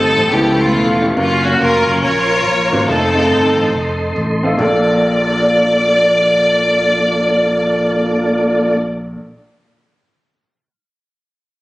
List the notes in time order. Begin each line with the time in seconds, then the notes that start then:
Already playing: G1 A3 C4 D#4 F4 G4 A4 C5 A5 D#6
0.17 A1
0.32 C#2 C#3 F3 B3 C#4 E4 G4 A4 B4 C#6
0.60 A3 B3 F4
0.75 E1
1.01 B3 C#4 E4 F4 G4
1.16 F#1 A#3 C#4 F4 F#4 A#4 F5
1.44 A#3 C#4 F4 F#4 C#5
1.60 F1 C#4 F4 A#4
1.87 F#1
2.03 A#1 F4 A#4 C#5
2.46 A#1
2.72 G#1 A#3 C#4 F4 F#4 C5
2.88 F1 A3 C4 D#4 F4 A4 D#5 C6
3.15 A3 C4 D#4 F4 G#4
3.21 A4
3.31 G1
3.58 A1
3.73 F1
4.16 A1
4.43 A3 C4 D#4 F4 A4
4.57 A#1 A#3 D4 F4 A4 D5